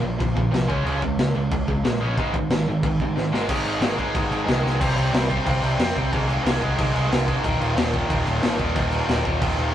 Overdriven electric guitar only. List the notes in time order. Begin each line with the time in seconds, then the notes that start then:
0.02 A#2 F3
0.19 A#2 F3
0.36 A#2 F3
0.52 A#2 F3
0.68 C#3 G#3 C#4
0.84 C#3 G#3 C#4
1.01 C#3 G#3
1.20 C#3 G#3
1.35 C#3 G#3
1.52 C#3 G#3
1.68 C#3 G#3
1.84 C#3 G#3
2.00 C#3 G#3 C#4
2.17 G#2 D#3 G#3
2.35 G#2 D#3
2.51 G#2 D#3
2.68 G#2 D#3
2.85 G#2 D#3
3.01 G#2 D#3
3.16 G#2 D#3
3.32 G#2 D#3 G#3
3.48 G#2 D#3 G#3
3.81 G#2 D#3 G#3
3.98 G#2 D#3 G#3
4.14 G#2 D#3 G#3
4.45 G#2 D#3 G#3
4.63 G#2 D#3 G#3
4.80 C3 G3 C4
4.96 C3 G3 C4
5.12 C3 G3 C4
5.29 C3 G3 C4
5.45 C3 G3 C4
5.62 C3 G3 C4
5.79 C3 G3 C4
5.95 C3 G3 C4
6.12 G#2 D#3 G#3
6.28 G#2 D#3 G#3
6.44 G#2 D#3 G#3
6.61 G#2 D#3 G#3
6.77 G#2 D#3 G#3
6.93 G#2 D#3 G#3
7.09 G#2 D#3 G#3
7.27 G#2 D#3 G#3
7.44 D#2 A#2 D#3
7.60 D#2 A#2 D#3
7.75 D#2 A#2 D#3
7.93 D#2 A#2 D#3
8.09 D#2 A#2 D#3
8.25 D#2 A#2 D#3
8.41 D#2 A#2 D#3
8.58 D#2 A#2 D#3
8.75 D#2 A#2 D#3
8.91 D#2 A#2 D#3
9.07 D#2 A#2 D#3
9.25 D#2 A#2 D#3
9.40 D#2 A#2 D#3
9.58 D#2 A#2 D#3